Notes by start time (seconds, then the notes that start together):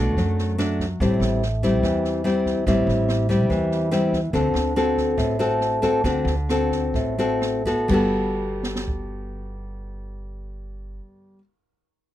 Already playing: B1 B2 A3 D4 F#4
0.17 F#2 F#3, kick, snare
0.38 snare
0.58 A3 D4 F#4, cross-stick, snare
0.79 kick, snare
1.00 A1 A2 G3 C4 E4, kick, snare
1.20 A1, cross-stick, snare
1.42 snare
1.63 G3 C4 E4, kick, snare
1.83 E2 E3, kick, cross-stick, snare
2.04 snare
2.24 G3 C4 E4, snare
2.46 kick, snare
2.67 A1 A2 G3 C4 E4, kick, cross-stick, snare
2.87 A1, snare
3.09 cross-stick, snare
3.29 G3 C4 E4, kick, snare
3.50 E2 E3, kick, snare
3.71 snare
3.91 G3 C4 E4, cross-stick, snare
4.13 kick, snare
4.33 D2 D3 C4 F#4 A4, kick, snare
4.54 D2, cross-stick, snare
4.76 C4 F#4 A4, snare
4.97 kick, snare
5.17 A1 A2, kick, cross-stick, snare
5.39 C4 F#4 A4, snare
5.61 snare
5.82 C4 F#4 A4, kick, snare
6.04 D2 D3 C4 F#4 A4, kick, cross-stick, snare
6.25 D2, snare
6.49 C4 F#4 A4, cross-stick, snare
6.71 kick, snare
6.94 A1 A2, kick, snare
7.18 C4 F#4 A4, snare
7.42 cross-stick, snare
7.65 B3 F#4 A4, kick, snare
7.88 G1 G3 B3 F#4, kick, crash
7.94 A4
8.63 snare
8.75 snare
8.88 kick